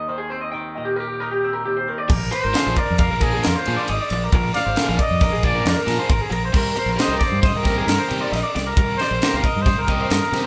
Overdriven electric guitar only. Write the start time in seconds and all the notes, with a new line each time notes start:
2.08 muted overdriven electric guitar stroke
2.31 muted overdriven electric guitar stroke
2.53 F3 A#3 D4 G#4
2.77 muted overdriven electric guitar stroke
2.99 muted overdriven electric guitar stroke
3.21 F3 A#3 D4 G#4
3.44 muted overdriven electric guitar stroke
3.66 F3 A#3 D4 G#4
3.89 muted overdriven electric guitar stroke
4.13 muted overdriven electric guitar stroke
4.34 muted overdriven electric guitar stroke
4.57 muted overdriven electric guitar stroke
4.78 F3 A#3 D4 G#4
5.00 muted overdriven electric guitar stroke
5.22 muted overdriven electric guitar stroke
5.43 F3 A#3 D4 G#4
5.64 muted overdriven electric guitar stroke
5.86 F3 A#3 D4 G#4
6.09 muted overdriven electric guitar stroke
6.30 muted overdriven electric guitar stroke
6.52 muted overdriven electric guitar stroke
6.75 muted overdriven electric guitar stroke
6.96 G3 C4 D#4 G4
7.20 muted overdriven electric guitar stroke
7.42 muted overdriven electric guitar stroke
7.64 G3 C4 D#4 G4
7.87 muted overdriven electric guitar stroke
8.08 G3 C4 D#4 G4
8.32 muted overdriven electric guitar stroke
8.55 muted overdriven electric guitar stroke
8.77 muted overdriven electric guitar stroke
9.01 muted overdriven electric guitar stroke
9.22 G3 C4 D#4 G4
9.44 muted overdriven electric guitar stroke
9.66 muted overdriven electric guitar stroke
9.87 G3 C4 D#4 G4
10.11 muted overdriven electric guitar stroke
10.33 G3 C4 D#4 G4